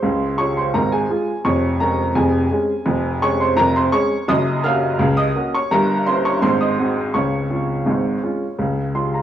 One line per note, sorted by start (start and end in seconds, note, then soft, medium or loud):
0.00 0.33 C#2 medium
0.00 0.33 C#3 medium
0.00 0.35 C5 medium
0.00 0.38 C6 medium
0.38 0.57 G#3 soft
0.38 0.58 F4 soft
0.38 0.58 G#4 soft
0.38 0.55 C#5 medium
0.38 0.56 C#6 medium
0.57 0.74 C5 medium
0.57 0.74 C6 medium
0.74 1.04 G#1 medium
0.74 1.04 G#2 medium
0.74 0.91 A#4 medium
0.74 0.91 A#5 medium
0.92 1.09 G#4 medium
0.92 1.45 G#5 medium
1.09 1.29 G#3 soft
1.09 1.29 F4 soft
1.09 1.30 G#4 medium
1.45 1.75 F1 medium
1.45 1.75 F2 medium
1.45 1.78 C#5 medium
1.45 1.80 C#6 medium
1.80 2.00 G#3 soft
1.80 2.00 C#4 soft
1.80 2.00 G#4 medium
1.80 2.14 A#4 medium
1.80 2.16 A#5 medium
2.15 2.46 F1 medium
2.15 2.46 F2 medium
2.15 2.50 G#4 medium
2.15 3.22 G#5 medium
2.51 2.71 G#3 soft
2.51 2.71 C#4 soft
2.51 2.71 G#4 medium
2.86 3.16 F1 medium
2.86 3.16 F2 medium
3.22 3.41 G#3 soft
3.22 3.42 C#4 soft
3.22 3.42 G#4 medium
3.22 3.39 C#5 medium
3.22 3.40 C#6 medium
3.40 3.57 C5 medium
3.40 3.57 C6 medium
3.57 3.87 F1 medium
3.57 3.87 F2 medium
3.57 3.74 A#4 medium
3.57 3.75 A#5 loud
3.76 3.92 C5 medium
3.76 3.93 C6 medium
3.92 4.12 G#3 soft
3.92 4.12 C#4 medium
3.92 4.13 G#4 medium
3.92 4.26 C#5 medium
3.92 4.28 C#6 medium
4.28 4.58 F#1 medium
4.28 4.58 F#2 medium
4.28 4.62 D#5 medium
4.28 4.64 D#6 loud
4.64 4.83 A#3 medium
4.64 4.84 C#4 medium
4.64 4.84 F#4 medium
4.64 5.14 F5 medium
4.64 5.17 F6 loud
4.99 5.29 C#2 medium
4.99 5.30 C#3 medium
5.17 5.51 D#5 medium
5.17 5.53 D#6 loud
5.36 5.55 A#3 soft
5.36 5.55 C#4 medium
5.36 5.55 F#4 medium
5.54 5.71 C#5 medium
5.54 5.71 C#6 medium
5.71 6.01 G1 medium
5.71 6.01 G2 medium
5.71 6.05 A#4 medium
5.71 6.07 A#5 loud
6.07 6.26 A#3 soft
6.07 6.26 C#4 medium
6.07 6.27 E4 medium
6.07 6.24 C5 medium
6.07 6.24 C6 medium
6.25 6.42 C#5 medium
6.25 6.43 C#6 medium
6.42 6.73 G#1 medium
6.42 6.73 G#2 medium
6.42 6.59 C5 medium
6.42 6.60 C6 loud
6.61 7.11 D#5 medium
6.61 7.14 D#6 medium
6.79 6.98 G#3 soft
6.79 6.98 C4 soft
6.79 6.99 F#4 medium
7.14 7.45 C#2 medium
7.14 7.45 C#3 medium
7.14 9.22 C#5 medium
7.14 9.22 C#6 medium
7.50 7.70 G#3 soft
7.50 7.70 C#4 soft
7.50 7.71 F4 soft
7.86 8.17 G#1 medium
7.86 8.17 G#2 medium
8.23 8.43 G#3 soft
8.23 8.43 C#4 soft
8.23 8.43 F4 soft
8.59 8.89 C#2 medium
8.59 8.89 C#3 medium
8.95 9.15 G#3 soft
8.95 9.15 C#4 soft
8.95 9.15 F4 soft
8.95 9.13 C6 medium
9.14 9.22 A#5 medium